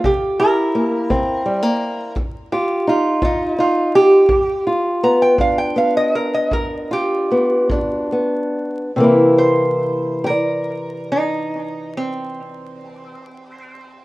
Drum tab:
BD |o--o--o--o--|o--o--o--o--|------------|